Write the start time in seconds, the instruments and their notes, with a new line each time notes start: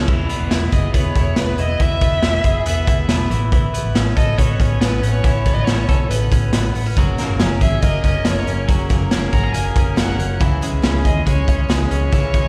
Already playing: clean electric guitar G#3 C#4 G#4
0.08 fingered electric bass E1, clean electric guitar E3, kick, crash
0.29 clean electric guitar B3, closed hi-hat
0.40 fingered electric bass E1
0.51 fingered electric bass E1, clean electric guitar E4, snare, closed hi-hat
0.72 fingered electric bass F#1, clean electric guitar G#4, violin D#5, kick, closed hi-hat
0.94 fingered electric bass E1, clean electric guitar B3, violin C#5, kick, closed hi-hat
1.16 fingered electric bass E1, clean electric guitar E4, kick, closed hi-hat
1.36 fingered electric bass E1, clean electric guitar B3, violin B4, snare, closed hi-hat
1.58 fingered electric bass E1, clean electric guitar E4, violin D#5, closed hi-hat
1.80 fingered electric bass E1, clean electric guitar E3, violin E5, kick, closed hi-hat
2.01 clean electric guitar B3, kick, closed hi-hat
2.12 fingered electric bass E1
2.22 fingered electric bass E1, clean electric guitar E4, snare, closed hi-hat
2.44 fingered electric bass F#1, clean electric guitar G#4, kick, closed hi-hat
2.66 fingered electric bass E1, clean electric guitar B3, violin E5, closed hi-hat
2.87 fingered electric bass E1, clean electric guitar E4, kick, closed hi-hat
3.08 fingered electric bass E1, clean electric guitar B3, snare, closed hi-hat
3.30 fingered electric bass A1, clean electric guitar E3, closed hi-hat
3.52 clean electric guitar E3, kick, closed hi-hat
3.74 clean electric guitar B3, closed hi-hat
3.84 fingered electric bass A1
3.94 fingered electric bass A1, clean electric guitar C#4, snare, closed hi-hat
4.16 fingered electric bass A1, clean electric guitar A4, violin D#5, kick, closed hi-hat
4.38 fingered electric bass A1, clean electric guitar B3, violin C#5, kick, closed hi-hat
4.60 fingered electric bass A1, clean electric guitar C#4, kick, closed hi-hat
4.80 fingered electric bass A1, clean electric guitar B3, violin B4, snare, closed hi-hat
5.02 fingered electric bass A1, clean electric guitar C#4, closed hi-hat
5.11 violin C#5
5.24 fingered electric bass A1, clean electric guitar E3, kick, closed hi-hat
5.46 clean electric guitar B3, kick, snare, closed hi-hat
5.53 fingered electric bass A1, violin D#5
5.64 fingered electric bass A1, clean electric guitar C#4, violin C#5, snare, closed hi-hat
5.89 fingered electric bass B1, clean electric guitar A4, kick, closed hi-hat
6.08 fingered electric bass A1, clean electric guitar B3, violin B4, closed hi-hat
6.32 fingered electric bass A1, clean electric guitar C#4, kick, closed hi-hat
6.53 fingered electric bass A1, clean electric guitar B3, snare, closed hi-hat
6.75 fingered electric bass A1, clean electric guitar B3, open hi-hat
6.86 clean electric guitar C#4
6.97 fingered electric bass F#1, steel-string acoustic guitar F#3 G#3 C#4 G#4 A#4, clean electric guitar F#3, kick, closed hi-hat
7.17 clean electric guitar A#3, steel-string acoustic guitar C#4 G#4 A#4, snare, closed hi-hat
7.29 fingered electric bass F#1
7.39 fingered electric bass F#1, steel-string acoustic guitar F#3 G#3 C#4 G#4 A#4, clean electric guitar C#4, snare, closed hi-hat
7.61 fingered electric bass G#1, steel-string acoustic guitar C#4 G#4 A#4, clean electric guitar G#4, violin E5, kick, closed hi-hat
7.82 fingered electric bass F#1, steel-string acoustic guitar G#3 C#4 G#4 A#4, clean electric guitar A#3, violin D#5, kick, closed hi-hat
8.04 fingered electric bass F#1, clean electric guitar C#4, steel-string acoustic guitar C#4 G#4 A#4, violin D#5, kick, closed hi-hat
8.25 fingered electric bass F#1, steel-string acoustic guitar F#3 G#3 C#4 G#4 A#4, clean electric guitar A#3, violin C#5, snare, closed hi-hat
8.47 fingered electric bass F#1, clean electric guitar C#4, steel-string acoustic guitar G#4 A#4, closed hi-hat
8.51 steel-string acoustic guitar C#4
8.68 fingered electric bass F#1, clean electric guitar F#3, steel-string acoustic guitar F#3 G#3 C#4 G#4 A#4, kick, closed hi-hat
8.89 clean electric guitar A#3, steel-string acoustic guitar C#4 G#4 A#4, kick, snare, closed hi-hat
9.01 fingered electric bass F#1
9.11 fingered electric bass F#1, steel-string acoustic guitar F#3 G#3 C#4 G#4 A#4, clean electric guitar C#4, snare, closed hi-hat
9.33 fingered electric bass G#1, steel-string acoustic guitar C#4 G#4 A#4, clean electric guitar F#4, violin A#5, kick, closed hi-hat
9.43 clean electric guitar G#4
9.52 fingered electric bass F#1, steel-string acoustic guitar G#3 C#4 G#4, clean electric guitar A#3, violin G#5, closed hi-hat
9.57 steel-string acoustic guitar A#4
9.75 fingered electric bass F#1, clean electric guitar C#4, steel-string acoustic guitar C#4 G#4 A#4, kick, closed hi-hat
9.96 fingered electric bass F#1, steel-string acoustic guitar F#3 G#3 C#4 G#4 A#4, clean electric guitar A#3, violin F#5, snare, closed hi-hat
10.18 fingered electric bass F#1, clean electric guitar C#4, steel-string acoustic guitar C#4 G#4 A#4, closed hi-hat
10.40 fingered electric bass C#2, steel-string acoustic guitar C#3 E3 G#3 C#4 G#4, clean electric guitar E3, kick, closed hi-hat
10.61 clean electric guitar G#3, steel-string acoustic guitar G#3 C#4 G#4, closed hi-hat
10.73 fingered electric bass C#2
10.82 fingered electric bass C#2, steel-string acoustic guitar C#3 E3 G#3 C#4 G#4, clean electric guitar C#4, snare, closed hi-hat
11.04 fingered electric bass D#2, steel-string acoustic guitar G#3 C#4 G#4, clean electric guitar G#4, violin D#5, kick, closed hi-hat
11.26 fingered electric bass C#2, steel-string acoustic guitar E3 G#3 C#4 G#4, clean electric guitar G#3, violin C#5, kick, closed hi-hat
11.48 fingered electric bass C#2, steel-string acoustic guitar G#3 C#4 G#4, clean electric guitar C#4, kick, closed hi-hat
11.68 fingered electric bass C#2, steel-string acoustic guitar C#3 E3 G#3 C#4 G#4, clean electric guitar G#3, snare, closed hi-hat
11.90 fingered electric bass C#2, steel-string acoustic guitar G#3 C#4 G#4, clean electric guitar C#4, violin C#5, closed hi-hat
12.12 fingered electric bass C#2, steel-string acoustic guitar C#3 E3 G#3 C#4 G#4, clean electric guitar E3, kick, closed hi-hat
12.34 clean electric guitar G#3, steel-string acoustic guitar G#3 C#4 G#4, kick, closed hi-hat
12.44 fingered electric bass C#2